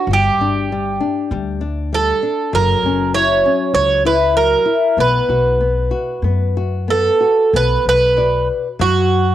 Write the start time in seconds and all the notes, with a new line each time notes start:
Already playing: F#4
0.07 G1 G3
0.13 G4
0.39 G1 D4
0.72 G3
1.00 D4
1.31 D2 G3
1.61 D4
1.93 G3 A4
2.23 D4
2.53 F#1 F#3 A#4
2.83 F#1 C#4
3.14 E4 C#5
3.46 C#4
3.74 C#2 F#3 C#5
4.05 E4 B4
4.37 F#3 A#4
4.65 E4
4.97 B1 B3 B4
5.29 B1 F#4
5.60 B3
5.91 F#4
6.22 F#2 B3
6.57 F#4
6.88 B3 A4
7.20 F#4
7.53 B1 B3 B4
7.86 B1 B4
8.17 F#4 B4 D5
8.79 F#2 F#3 F#4